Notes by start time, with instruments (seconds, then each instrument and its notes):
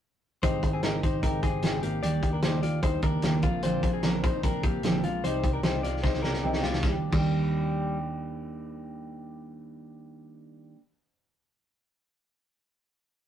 0.42 picked electric bass G#1, steel-string acoustic guitar G#3 C4 D#4 G4, clean electric guitar D#4 C5, kick, closed hi-hat
0.62 picked electric bass G#1, steel-string acoustic guitar C4 D#4 G4, kick, closed hi-hat
0.73 clean electric guitar C4 G#4
0.83 picked electric bass G#1, steel-string acoustic guitar G#3 C4 D#4 G4, clean electric guitar D#4 A#4, snare, closed hi-hat
1.03 picked electric bass G#1, steel-string acoustic guitar C4 D#4 G4, clean electric guitar D#4 C5, kick, closed hi-hat
1.22 picked electric bass G#1, steel-string acoustic guitar G#3 C4 D#4 G4, clean electric guitar D#4 A#4, kick, closed hi-hat
1.42 picked electric bass G#1, clean electric guitar C4 G#4, steel-string acoustic guitar C4 D#4 G4, kick, closed hi-hat
1.62 picked electric bass G#1, steel-string acoustic guitar G#3 C4 D#4 G4, snare, closed hi-hat
1.82 picked electric bass G#1, clean electric guitar A#3 G4, steel-string acoustic guitar C4 D#4 G4, closed hi-hat
2.02 picked electric bass D#2, steel-string acoustic guitar D#3 G3 A#3 D4 G4, clean electric guitar G4 D5, closed hi-hat
2.22 picked electric bass D#2, steel-string acoustic guitar A#3 D4 G4, kick, closed hi-hat
2.33 clean electric guitar D4 A#4
2.42 picked electric bass D#2, steel-string acoustic guitar D#3 G3 A#3 D4 G4, clean electric guitar D#4 C5, snare, closed hi-hat
2.62 picked electric bass D#2, steel-string acoustic guitar A#3 D4 G4, clean electric guitar F4 D5, closed hi-hat
2.82 picked electric bass D#2, steel-string acoustic guitar G3 A#3 D4 G4, clean electric guitar D#4 C5, kick, closed hi-hat
3.02 picked electric bass D#2, steel-string acoustic guitar A#3 D4 G4, clean electric guitar D4 A#4, kick, closed hi-hat
3.22 picked electric bass D#2, steel-string acoustic guitar D#3 G3 A#3 D4 G4, snare, closed hi-hat
3.42 picked electric bass A#1, steel-string acoustic guitar F3 C4 D4 A#4, clean electric guitar A#3 F4, kick, closed hi-hat
3.62 steel-string acoustic guitar A#2 D3 F3 C4 D4 A#4, clean electric guitar F4 C5, closed hi-hat
3.82 picked electric bass A#1, steel-string acoustic guitar F3 C4 D4 A#4, kick, closed hi-hat
3.93 clean electric guitar C4 G#4
4.03 picked electric bass A#1, steel-string acoustic guitar A#2 D3 F3 C4 D4 A#4, clean electric guitar D4 A#4, snare, closed hi-hat
4.23 picked electric bass A#1, steel-string acoustic guitar F3 C4 D4 A#4, clean electric guitar D#4 C5, kick, closed hi-hat
4.43 picked electric bass A#1, steel-string acoustic guitar F3 C4 D4 A#4, clean electric guitar D4 A#4, kick, closed hi-hat
4.63 picked electric bass A#1, steel-string acoustic guitar F3 C4 D4 A#4, clean electric guitar A#3 G4, kick, closed hi-hat
4.83 picked electric bass A#1, steel-string acoustic guitar A#2 D3 F3 C4 D4 A#4, snare, closed hi-hat
5.03 picked electric bass A#1, steel-string acoustic guitar F3 C4 D4 A#4, clean electric guitar G#3 F4, closed hi-hat
5.23 picked electric bass C2, steel-string acoustic guitar C3 G3 C4 D#4 G4, clean electric guitar D#4 C5, closed hi-hat
5.43 picked electric bass C2, steel-string acoustic guitar C4 D#4 G4, kick, closed hi-hat
5.53 clean electric guitar D4 A#4
5.63 picked electric bass C2, steel-string acoustic guitar C3 G3 C4 D#4 G4, clean electric guitar D#4 C5, snare, closed hi-hat
5.83 picked electric bass C2, steel-string acoustic guitar C4 D#4 G4, clean electric guitar F4 D5, snare, closed hi-hat
6.03 picked electric bass C2, steel-string acoustic guitar G3 C4 D#4 G4, clean electric guitar D#4 C5, kick, snare
6.14 snare
6.23 picked electric bass C2, steel-string acoustic guitar C4 D#4 G4, clean electric guitar D4 A#4, snare
6.34 snare
6.43 picked electric bass C2, steel-string acoustic guitar C3 G3 C4 D#4 G4
6.53 snare
6.63 picked electric bass C2, clean electric guitar G#3 F4, steel-string acoustic guitar C4 D#4 G4, snare
6.73 snare
6.81 picked electric bass D#2, steel-string acoustic guitar D#3 G3, clean electric guitar G3, kick, snare
6.85 steel-string acoustic guitar A#3 D4 G4
7.10 picked electric bass D#2, steel-string acoustic guitar D#3 G3, clean electric guitar G3, kick, crash
7.15 steel-string acoustic guitar A#3 D4 G4